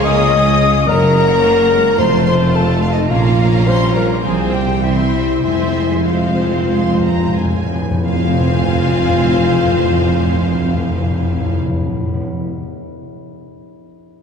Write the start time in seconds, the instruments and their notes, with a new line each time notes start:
Already playing: double bass section C#2, tuba C#2, harp C#3 F3 C#4 F4 G#4 F5 G#5, cello section A#3, viola section C#4 G#4, violin section F5 G#5
0.04 harp G#3, clarinet D#5, french horn section D#5, flute D#6, violin section D#6
0.20 harp F4
0.34 cello section G#3, harp C#5
0.47 harp G#4
0.74 harp C#6
0.88 tuba F#1, double bass section F#1, harp F#2, cello section F#3, viola section A#3 A#4, clarinet A#4, french horn section A#4, violin section C#5 F#5 A#5, flute A#5
1.02 harp C#3
1.15 harp A#3
1.29 harp F#4
1.43 cello section A#3, harp C#5
1.71 cello section G#3, harp F#5
1.84 harp C#6
1.98 tuba F1, double bass section F1, harp F2, timpani F2, cello section A3, viola section A3 F4, clarinet C5, french horn section C5, violin section F5 A5 C6, flute C6
2.12 harp C3
2.25 harp A3, clarinet C5, french horn section C5, violin section C6, flute C6
2.39 harp A4
2.54 clarinet A4, french horn section A4, harp F5, violin section A5, flute A5
2.68 harp A4
2.82 clarinet F4, french horn section F4, violin section F5, flute F5, harp A5
2.92 clarinet D#4, french horn section D#4, violin section D#5, flute D#5
2.96 harp F6
3.09 tuba A#1, double bass section A#1, harp A#2, cello section A#3, viola section C#4 F4, clarinet F4, french horn section F4, violin section F5 A#5, flute F5
3.25 harp F3
3.39 harp C#4
3.52 harp A#4
3.67 cello section G3, clarinet C5, french horn section C5, harp F5, flute C6, violin section C6
3.81 harp C#5
3.95 clarinet A#4, french horn section A#4, violin section A#5, harp A#5, flute A#5
4.10 harp F6
4.23 tuba C2, double bass section C2, timpani C3, harp C3, cello section F3, viola section C4 C5, french horn section G#4, clarinet G#4, violin section F5 G5 G#5, flute G#5
4.39 harp G3
4.53 harp C4, clarinet G4, french horn section G4, violin section G5, flute G5
4.69 harp G4
4.82 harp C3, cello section E3, viola section C4 C5, clarinet E4, french horn section E4, violin section E5 G5 C6, flute E5
4.99 harp G3
5.13 cello section G3, harp C4
5.29 harp G4
5.43 tuba F1, timpani F2, double bass section F2, harp F3, cello section G#3, viola section C4 C5, clarinet E4, french horn section E4, violin section E5 G#5 C6, flute E5
5.52 timpani F2
5.61 timpani F2
5.69 timpani F2
5.75 harp C4
5.87 timpani F2, harp G#4
6.04 timpani F2, viola section C4 C5, clarinet F4, french horn section F4, harp C5, violin section F5, flute F5
6.12 timpani F2
6.21 timpani F2, harp G#4
6.29 timpani F2
6.37 timpani F2, harp G#5
6.47 timpani F2
6.54 timpani F2, harp C6
6.64 timpani F2
6.70 timpani F2, harp G#5, violin section C6
6.82 timpani F2
6.87 harp C6
6.91 timpani F2
7.00 timpani F2, harp G#5, violin section A#5
7.08 timpani F2
7.17 timpani F2, harp C5
7.27 timpani F2
7.36 timpani F2, harp G#4, violin section G#5
7.45 timpani F2
7.54 timpani F2, harp C4
7.64 timpani F2
7.71 timpani F2, harp F4
7.82 timpani F2
7.88 timpani F2, harp C4
8.05 tuba F1, double bass section F1, cello section F2, timpani F2, harp F3, viola section C4 C5, clarinet F4, french horn section F4, violin section F5 G#5, flute F5
8.13 timpani F2, harp C4
8.19 timpani F2, harp F4
8.27 timpani F2, harp G#4
8.33 timpani F2, harp C5
8.40 timpani F2, harp G#5
8.47 timpani F2
8.54 timpani F2
8.61 timpani F2
8.68 timpani F2
8.75 timpani F2
8.83 timpani F2
8.89 timpani F2
8.96 timpani F2
9.03 timpani F2
9.10 timpani F2
9.16 timpani F2
9.23 timpani F2
9.29 timpani F2
9.37 timpani F2
9.43 timpani F2
9.51 timpani F2
9.57 timpani F2
9.64 timpani F2
9.71 timpani F2
9.78 timpani F2
9.84 timpani F2
9.91 timpani F2
9.98 timpani F2
10.05 timpani F2
10.12 timpani F2
10.20 timpani F2
10.27 timpani F2
10.34 timpani F2
10.40 timpani F2
10.47 timpani F2
10.54 timpani F2
10.61 timpani F2
10.68 timpani F2
10.75 timpani F2
10.82 timpani F2
10.89 timpani F2
10.96 timpani F2
11.03 timpani F2
11.10 timpani F2
11.17 timpani F2
11.25 timpani F2
11.31 timpani F2
11.39 timpani F2
11.46 timpani F2
11.53 timpani F2
11.60 timpani F2
11.67 timpani F2
11.73 timpani F2
11.80 timpani F2
11.87 timpani F2
11.94 timpani F2
12.00 timpani F2
12.07 timpani F2
12.14 timpani F2
12.21 timpani F2